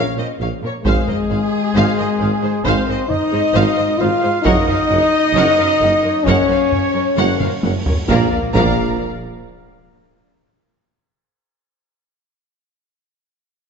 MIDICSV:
0, 0, Header, 1, 12, 480
1, 0, Start_track
1, 0, Key_signature, -5, "minor"
1, 0, Tempo, 900901
1, 451, Time_signature, 4, 2, 24, 8
1, 2851, Tempo, 910470
1, 7252, End_track
2, 0, Start_track
2, 0, Title_t, "Violin section"
2, 0, Program_c, 0, 48
2, 0, Note_on_c, 0, 77, 78
2, 92, Note_off_c, 0, 77, 0
2, 98, Note_on_c, 0, 75, 61
2, 141, Note_off_c, 0, 75, 0
2, 220, Note_on_c, 0, 77, 63
2, 263, Note_off_c, 0, 77, 0
2, 345, Note_on_c, 0, 73, 66
2, 388, Note_off_c, 0, 73, 0
2, 458, Note_on_c, 0, 77, 73
2, 566, Note_off_c, 0, 77, 0
2, 581, Note_on_c, 0, 75, 53
2, 623, Note_off_c, 0, 75, 0
2, 697, Note_on_c, 0, 77, 48
2, 740, Note_off_c, 0, 77, 0
2, 941, Note_on_c, 0, 77, 89
2, 1048, Note_off_c, 0, 77, 0
2, 1064, Note_on_c, 0, 75, 56
2, 1107, Note_off_c, 0, 75, 0
2, 1184, Note_on_c, 0, 77, 59
2, 1227, Note_off_c, 0, 77, 0
2, 1302, Note_on_c, 0, 72, 66
2, 1344, Note_off_c, 0, 72, 0
2, 1421, Note_on_c, 0, 77, 83
2, 1527, Note_off_c, 0, 77, 0
2, 1547, Note_on_c, 0, 75, 71
2, 1590, Note_off_c, 0, 75, 0
2, 1777, Note_on_c, 0, 72, 73
2, 1819, Note_off_c, 0, 72, 0
2, 1893, Note_on_c, 0, 77, 92
2, 2004, Note_off_c, 0, 77, 0
2, 2012, Note_on_c, 0, 75, 69
2, 2054, Note_off_c, 0, 75, 0
2, 2129, Note_on_c, 0, 77, 73
2, 2172, Note_off_c, 0, 77, 0
2, 2256, Note_on_c, 0, 72, 67
2, 2298, Note_off_c, 0, 72, 0
2, 2366, Note_on_c, 0, 78, 86
2, 2480, Note_off_c, 0, 78, 0
2, 2501, Note_on_c, 0, 77, 69
2, 2544, Note_off_c, 0, 77, 0
2, 2612, Note_on_c, 0, 78, 66
2, 2655, Note_off_c, 0, 78, 0
2, 2858, Note_on_c, 0, 78, 95
2, 2967, Note_off_c, 0, 78, 0
2, 2983, Note_on_c, 0, 77, 68
2, 3025, Note_off_c, 0, 77, 0
2, 3101, Note_on_c, 0, 78, 77
2, 3144, Note_off_c, 0, 78, 0
2, 3220, Note_on_c, 0, 73, 65
2, 3262, Note_off_c, 0, 73, 0
2, 3338, Note_on_c, 0, 78, 92
2, 3447, Note_off_c, 0, 78, 0
2, 3464, Note_on_c, 0, 77, 70
2, 3507, Note_off_c, 0, 77, 0
2, 3690, Note_on_c, 0, 73, 69
2, 3732, Note_off_c, 0, 73, 0
2, 3814, Note_on_c, 0, 78, 94
2, 3927, Note_off_c, 0, 78, 0
2, 3928, Note_on_c, 0, 77, 65
2, 3970, Note_off_c, 0, 77, 0
2, 4057, Note_on_c, 0, 78, 65
2, 4099, Note_off_c, 0, 78, 0
2, 4172, Note_on_c, 0, 73, 64
2, 4214, Note_off_c, 0, 73, 0
2, 4294, Note_on_c, 0, 77, 77
2, 4429, Note_off_c, 0, 77, 0
2, 4538, Note_on_c, 0, 77, 78
2, 4805, Note_off_c, 0, 77, 0
2, 7252, End_track
3, 0, Start_track
3, 0, Title_t, "Violin section"
3, 0, Program_c, 1, 48
3, 0, Note_on_c, 1, 73, 76
3, 210, Note_off_c, 1, 73, 0
3, 455, Note_on_c, 1, 68, 95
3, 1391, Note_off_c, 1, 68, 0
3, 1410, Note_on_c, 1, 72, 93
3, 1650, Note_off_c, 1, 72, 0
3, 1655, Note_on_c, 1, 75, 97
3, 2134, Note_off_c, 1, 75, 0
3, 2138, Note_on_c, 1, 77, 91
3, 2375, Note_off_c, 1, 77, 0
3, 2376, Note_on_c, 1, 75, 120
3, 3315, Note_off_c, 1, 75, 0
3, 3331, Note_on_c, 1, 73, 101
3, 4057, Note_off_c, 1, 73, 0
3, 4297, Note_on_c, 1, 82, 83
3, 4431, Note_off_c, 1, 82, 0
3, 4538, Note_on_c, 1, 82, 86
3, 4804, Note_off_c, 1, 82, 0
3, 7252, End_track
4, 0, Start_track
4, 0, Title_t, "Trumpet"
4, 0, Program_c, 2, 56
4, 0, Note_on_c, 2, 73, 74
4, 213, Note_off_c, 2, 73, 0
4, 449, Note_on_c, 2, 68, 90
4, 1412, Note_on_c, 2, 72, 87
4, 1420, Note_off_c, 2, 68, 0
4, 1650, Note_on_c, 2, 75, 92
4, 1658, Note_off_c, 2, 72, 0
4, 2136, Note_on_c, 2, 77, 93
4, 2144, Note_off_c, 2, 75, 0
4, 2374, Note_on_c, 2, 75, 125
4, 2382, Note_off_c, 2, 77, 0
4, 3326, Note_off_c, 2, 75, 0
4, 3329, Note_on_c, 2, 73, 100
4, 4042, Note_off_c, 2, 73, 0
4, 4296, Note_on_c, 2, 70, 88
4, 4396, Note_off_c, 2, 70, 0
4, 4536, Note_on_c, 2, 70, 83
4, 4761, Note_off_c, 2, 70, 0
4, 7252, End_track
5, 0, Start_track
5, 0, Title_t, "Viola section"
5, 0, Program_c, 3, 48
5, 0, Note_on_c, 3, 70, 74
5, 0, Note_on_c, 3, 73, 68
5, 83, Note_off_c, 3, 73, 0
5, 84, Note_off_c, 3, 70, 0
5, 93, Note_on_c, 3, 72, 62
5, 94, Note_on_c, 3, 70, 61
5, 136, Note_off_c, 3, 70, 0
5, 136, Note_off_c, 3, 72, 0
5, 216, Note_on_c, 3, 73, 56
5, 220, Note_on_c, 3, 70, 60
5, 259, Note_off_c, 3, 73, 0
5, 263, Note_off_c, 3, 70, 0
5, 335, Note_on_c, 3, 70, 58
5, 337, Note_off_c, 3, 70, 0
5, 337, Note_on_c, 3, 70, 55
5, 379, Note_off_c, 3, 70, 0
5, 452, Note_on_c, 3, 72, 71
5, 453, Note_off_c, 3, 72, 0
5, 453, Note_on_c, 3, 72, 78
5, 563, Note_off_c, 3, 72, 0
5, 572, Note_on_c, 3, 72, 56
5, 574, Note_on_c, 3, 70, 54
5, 614, Note_off_c, 3, 72, 0
5, 617, Note_off_c, 3, 70, 0
5, 696, Note_on_c, 3, 72, 52
5, 739, Note_off_c, 3, 72, 0
5, 929, Note_on_c, 3, 72, 85
5, 934, Note_off_c, 3, 72, 0
5, 934, Note_on_c, 3, 72, 80
5, 1044, Note_off_c, 3, 72, 0
5, 1052, Note_on_c, 3, 70, 69
5, 1053, Note_on_c, 3, 72, 61
5, 1095, Note_off_c, 3, 70, 0
5, 1096, Note_off_c, 3, 72, 0
5, 1168, Note_on_c, 3, 72, 60
5, 1169, Note_off_c, 3, 72, 0
5, 1169, Note_on_c, 3, 72, 56
5, 1212, Note_off_c, 3, 72, 0
5, 1292, Note_on_c, 3, 72, 68
5, 1294, Note_on_c, 3, 68, 58
5, 1334, Note_off_c, 3, 72, 0
5, 1337, Note_off_c, 3, 68, 0
5, 1408, Note_on_c, 3, 72, 100
5, 1410, Note_off_c, 3, 72, 0
5, 1410, Note_on_c, 3, 72, 98
5, 1522, Note_off_c, 3, 72, 0
5, 1528, Note_on_c, 3, 72, 64
5, 1529, Note_on_c, 3, 70, 68
5, 1570, Note_off_c, 3, 72, 0
5, 1571, Note_off_c, 3, 70, 0
5, 1767, Note_on_c, 3, 68, 68
5, 1769, Note_on_c, 3, 72, 64
5, 1809, Note_off_c, 3, 68, 0
5, 1812, Note_off_c, 3, 72, 0
5, 1884, Note_on_c, 3, 72, 77
5, 1999, Note_off_c, 3, 72, 0
5, 2004, Note_on_c, 3, 72, 72
5, 2006, Note_on_c, 3, 70, 69
5, 2047, Note_off_c, 3, 72, 0
5, 2049, Note_off_c, 3, 70, 0
5, 2127, Note_on_c, 3, 72, 68
5, 2128, Note_off_c, 3, 72, 0
5, 2128, Note_on_c, 3, 72, 79
5, 2171, Note_off_c, 3, 72, 0
5, 2242, Note_on_c, 3, 72, 71
5, 2244, Note_on_c, 3, 68, 72
5, 2285, Note_off_c, 3, 72, 0
5, 2287, Note_off_c, 3, 68, 0
5, 2364, Note_on_c, 3, 70, 105
5, 2364, Note_on_c, 3, 73, 91
5, 2479, Note_off_c, 3, 70, 0
5, 2479, Note_off_c, 3, 73, 0
5, 2489, Note_on_c, 3, 70, 63
5, 2489, Note_on_c, 3, 72, 68
5, 2531, Note_off_c, 3, 72, 0
5, 2532, Note_off_c, 3, 70, 0
5, 2608, Note_on_c, 3, 73, 67
5, 2611, Note_on_c, 3, 70, 69
5, 2651, Note_off_c, 3, 73, 0
5, 2653, Note_off_c, 3, 70, 0
5, 2845, Note_on_c, 3, 70, 99
5, 2846, Note_on_c, 3, 73, 95
5, 2960, Note_off_c, 3, 70, 0
5, 2961, Note_off_c, 3, 73, 0
5, 2964, Note_on_c, 3, 72, 65
5, 2967, Note_on_c, 3, 70, 63
5, 3006, Note_off_c, 3, 72, 0
5, 3009, Note_off_c, 3, 70, 0
5, 3089, Note_on_c, 3, 70, 63
5, 3090, Note_on_c, 3, 73, 67
5, 3131, Note_off_c, 3, 70, 0
5, 3132, Note_off_c, 3, 73, 0
5, 3209, Note_on_c, 3, 70, 73
5, 3210, Note_off_c, 3, 70, 0
5, 3210, Note_on_c, 3, 70, 70
5, 3252, Note_off_c, 3, 70, 0
5, 3329, Note_on_c, 3, 70, 95
5, 3332, Note_on_c, 3, 73, 101
5, 3440, Note_off_c, 3, 70, 0
5, 3444, Note_off_c, 3, 73, 0
5, 3447, Note_on_c, 3, 70, 65
5, 3450, Note_on_c, 3, 72, 66
5, 3489, Note_off_c, 3, 70, 0
5, 3492, Note_off_c, 3, 72, 0
5, 3689, Note_on_c, 3, 70, 67
5, 3691, Note_off_c, 3, 70, 0
5, 3691, Note_on_c, 3, 70, 65
5, 3733, Note_off_c, 3, 70, 0
5, 3814, Note_on_c, 3, 70, 77
5, 3815, Note_on_c, 3, 73, 73
5, 3927, Note_off_c, 3, 70, 0
5, 3928, Note_off_c, 3, 73, 0
5, 3940, Note_on_c, 3, 70, 66
5, 3940, Note_on_c, 3, 72, 62
5, 3982, Note_off_c, 3, 70, 0
5, 3982, Note_off_c, 3, 72, 0
5, 4057, Note_on_c, 3, 70, 65
5, 4059, Note_on_c, 3, 73, 57
5, 4099, Note_off_c, 3, 70, 0
5, 4101, Note_off_c, 3, 73, 0
5, 4180, Note_on_c, 3, 70, 56
5, 4222, Note_off_c, 3, 70, 0
5, 4297, Note_on_c, 3, 74, 80
5, 4299, Note_on_c, 3, 70, 83
5, 4431, Note_off_c, 3, 74, 0
5, 4432, Note_off_c, 3, 70, 0
5, 4533, Note_on_c, 3, 70, 77
5, 4533, Note_on_c, 3, 74, 73
5, 4802, Note_off_c, 3, 70, 0
5, 4802, Note_off_c, 3, 74, 0
5, 7252, End_track
6, 0, Start_track
6, 0, Title_t, "French horn section"
6, 0, Program_c, 4, 60
6, 0, Note_on_c, 4, 61, 82
6, 209, Note_off_c, 4, 61, 0
6, 440, Note_on_c, 4, 56, 102
6, 1383, Note_off_c, 4, 56, 0
6, 1408, Note_on_c, 4, 60, 102
6, 1646, Note_on_c, 4, 63, 112
6, 1649, Note_off_c, 4, 60, 0
6, 2119, Note_off_c, 4, 63, 0
6, 2122, Note_on_c, 4, 65, 97
6, 2359, Note_on_c, 4, 63, 127
6, 2366, Note_off_c, 4, 65, 0
6, 3307, Note_off_c, 4, 63, 0
6, 3321, Note_on_c, 4, 61, 113
6, 4052, Note_off_c, 4, 61, 0
6, 4291, Note_on_c, 4, 58, 96
6, 4519, Note_off_c, 4, 58, 0
6, 7252, End_track
7, 0, Start_track
7, 0, Title_t, "Cello section"
7, 0, Program_c, 5, 48
7, 93, Note_on_c, 5, 46, 55
7, 136, Note_off_c, 5, 46, 0
7, 213, Note_on_c, 5, 46, 56
7, 255, Note_off_c, 5, 46, 0
7, 330, Note_on_c, 5, 46, 55
7, 372, Note_off_c, 5, 46, 0
7, 455, Note_on_c, 5, 44, 82
7, 497, Note_off_c, 5, 44, 0
7, 575, Note_on_c, 5, 44, 59
7, 617, Note_off_c, 5, 44, 0
7, 696, Note_on_c, 5, 44, 57
7, 738, Note_off_c, 5, 44, 0
7, 935, Note_on_c, 5, 44, 95
7, 978, Note_off_c, 5, 44, 0
7, 1058, Note_on_c, 5, 44, 61
7, 1100, Note_off_c, 5, 44, 0
7, 1176, Note_on_c, 5, 44, 64
7, 1218, Note_off_c, 5, 44, 0
7, 1293, Note_on_c, 5, 44, 65
7, 1336, Note_off_c, 5, 44, 0
7, 1411, Note_on_c, 5, 44, 88
7, 1454, Note_off_c, 5, 44, 0
7, 1533, Note_on_c, 5, 44, 62
7, 1575, Note_off_c, 5, 44, 0
7, 1773, Note_on_c, 5, 44, 69
7, 1815, Note_off_c, 5, 44, 0
7, 1891, Note_on_c, 5, 44, 99
7, 1934, Note_off_c, 5, 44, 0
7, 2014, Note_on_c, 5, 44, 66
7, 2056, Note_off_c, 5, 44, 0
7, 2136, Note_on_c, 5, 44, 69
7, 2178, Note_off_c, 5, 44, 0
7, 2256, Note_on_c, 5, 44, 67
7, 2298, Note_off_c, 5, 44, 0
7, 2376, Note_on_c, 5, 42, 99
7, 2419, Note_off_c, 5, 42, 0
7, 2495, Note_on_c, 5, 42, 73
7, 2538, Note_off_c, 5, 42, 0
7, 2611, Note_on_c, 5, 42, 70
7, 2654, Note_off_c, 5, 42, 0
7, 2856, Note_on_c, 5, 42, 102
7, 2898, Note_off_c, 5, 42, 0
7, 2975, Note_on_c, 5, 42, 69
7, 3017, Note_off_c, 5, 42, 0
7, 3090, Note_on_c, 5, 42, 73
7, 3133, Note_off_c, 5, 42, 0
7, 3208, Note_on_c, 5, 42, 67
7, 3250, Note_off_c, 5, 42, 0
7, 3329, Note_on_c, 5, 42, 95
7, 3371, Note_off_c, 5, 42, 0
7, 3447, Note_on_c, 5, 42, 64
7, 3490, Note_off_c, 5, 42, 0
7, 3689, Note_on_c, 5, 42, 63
7, 3731, Note_off_c, 5, 42, 0
7, 3812, Note_on_c, 5, 42, 86
7, 3854, Note_off_c, 5, 42, 0
7, 3937, Note_on_c, 5, 42, 58
7, 3979, Note_off_c, 5, 42, 0
7, 4061, Note_on_c, 5, 42, 60
7, 4103, Note_off_c, 5, 42, 0
7, 4181, Note_on_c, 5, 42, 59
7, 4223, Note_off_c, 5, 42, 0
7, 4303, Note_on_c, 5, 46, 89
7, 4434, Note_off_c, 5, 46, 0
7, 4542, Note_on_c, 5, 46, 89
7, 4807, Note_off_c, 5, 46, 0
7, 7252, End_track
8, 0, Start_track
8, 0, Title_t, "Double bass section"
8, 0, Program_c, 6, 48
8, 212, Note_on_c, 6, 34, 58
8, 255, Note_off_c, 6, 34, 0
8, 447, Note_on_c, 6, 32, 76
8, 489, Note_off_c, 6, 32, 0
8, 689, Note_on_c, 6, 32, 63
8, 731, Note_off_c, 6, 32, 0
8, 931, Note_on_c, 6, 32, 86
8, 974, Note_off_c, 6, 32, 0
8, 1172, Note_on_c, 6, 32, 64
8, 1215, Note_off_c, 6, 32, 0
8, 1414, Note_on_c, 6, 32, 85
8, 1457, Note_off_c, 6, 32, 0
8, 1888, Note_on_c, 6, 32, 93
8, 1931, Note_off_c, 6, 32, 0
8, 2133, Note_on_c, 6, 32, 73
8, 2175, Note_off_c, 6, 32, 0
8, 2373, Note_on_c, 6, 30, 96
8, 2415, Note_off_c, 6, 30, 0
8, 2610, Note_on_c, 6, 30, 67
8, 2652, Note_off_c, 6, 30, 0
8, 2850, Note_on_c, 6, 30, 97
8, 2892, Note_off_c, 6, 30, 0
8, 3092, Note_on_c, 6, 30, 70
8, 3134, Note_off_c, 6, 30, 0
8, 3331, Note_on_c, 6, 30, 88
8, 3373, Note_off_c, 6, 30, 0
8, 3816, Note_on_c, 6, 30, 81
8, 3858, Note_off_c, 6, 30, 0
8, 4060, Note_on_c, 6, 30, 58
8, 4102, Note_off_c, 6, 30, 0
8, 4299, Note_on_c, 6, 34, 87
8, 4432, Note_off_c, 6, 34, 0
8, 4538, Note_on_c, 6, 34, 92
8, 4804, Note_off_c, 6, 34, 0
8, 7252, End_track
9, 0, Start_track
9, 0, Title_t, "Tuba"
9, 0, Program_c, 7, 58
9, 212, Note_on_c, 7, 34, 58
9, 260, Note_off_c, 7, 34, 0
9, 454, Note_on_c, 7, 32, 82
9, 502, Note_off_c, 7, 32, 0
9, 693, Note_on_c, 7, 32, 58
9, 740, Note_off_c, 7, 32, 0
9, 938, Note_on_c, 7, 32, 90
9, 985, Note_off_c, 7, 32, 0
9, 1178, Note_on_c, 7, 32, 60
9, 1224, Note_off_c, 7, 32, 0
9, 1417, Note_on_c, 7, 32, 92
9, 1463, Note_off_c, 7, 32, 0
9, 1894, Note_on_c, 7, 32, 102
9, 1942, Note_off_c, 7, 32, 0
9, 2136, Note_on_c, 7, 32, 69
9, 2183, Note_off_c, 7, 32, 0
9, 2380, Note_on_c, 7, 30, 96
9, 2426, Note_off_c, 7, 30, 0
9, 2620, Note_on_c, 7, 30, 72
9, 2667, Note_off_c, 7, 30, 0
9, 2864, Note_on_c, 7, 30, 98
9, 2910, Note_off_c, 7, 30, 0
9, 3101, Note_on_c, 7, 30, 65
9, 3147, Note_off_c, 7, 30, 0
9, 3332, Note_on_c, 7, 30, 95
9, 3380, Note_off_c, 7, 30, 0
9, 3817, Note_on_c, 7, 30, 93
9, 3865, Note_off_c, 7, 30, 0
9, 4060, Note_on_c, 7, 30, 60
9, 4108, Note_off_c, 7, 30, 0
9, 4300, Note_on_c, 7, 34, 85
9, 4399, Note_off_c, 7, 34, 0
9, 4533, Note_on_c, 7, 34, 87
9, 4760, Note_off_c, 7, 34, 0
9, 7252, End_track
10, 0, Start_track
10, 0, Title_t, "Cymbal swell"
10, 0, Program_c, 8, 119
10, 2373, Note_on_c, 8, 60, 74
10, 4299, Note_off_c, 8, 60, 0
10, 7252, End_track
11, 0, Start_track
11, 0, Title_t, "Sub drop"
11, 0, Program_c, 10, 103
11, 4299, Note_on_c, 10, 60, 71
11, 6212, Note_off_c, 10, 60, 0
11, 7252, End_track
12, 0, Start_track
12, 0, Title_t, "Taiko and cinematic ensemble drums"
12, 453, Note_on_c, 9, 41, 98
12, 506, Note_off_c, 9, 41, 0
12, 573, Note_on_c, 9, 45, 55
12, 627, Note_off_c, 9, 45, 0
12, 1411, Note_on_c, 9, 41, 81
12, 1464, Note_off_c, 9, 41, 0
12, 1652, Note_on_c, 9, 45, 58
12, 1706, Note_off_c, 9, 45, 0
12, 2373, Note_on_c, 9, 41, 98
12, 2426, Note_off_c, 9, 41, 0
12, 2496, Note_on_c, 9, 45, 56
12, 2549, Note_off_c, 9, 45, 0
12, 3333, Note_on_c, 9, 41, 80
12, 3386, Note_off_c, 9, 41, 0
12, 3574, Note_on_c, 9, 45, 65
12, 3626, Note_off_c, 9, 45, 0
12, 3813, Note_on_c, 9, 48, 86
12, 3866, Note_off_c, 9, 48, 0
12, 3932, Note_on_c, 9, 45, 91
12, 3985, Note_off_c, 9, 45, 0
12, 4054, Note_on_c, 9, 48, 96
12, 4106, Note_off_c, 9, 48, 0
12, 4175, Note_on_c, 9, 43, 100
12, 4228, Note_off_c, 9, 43, 0
12, 4294, Note_on_c, 9, 41, 91
12, 4347, Note_off_c, 9, 41, 0
12, 4536, Note_on_c, 9, 41, 101
12, 4588, Note_off_c, 9, 41, 0
12, 7252, End_track
0, 0, End_of_file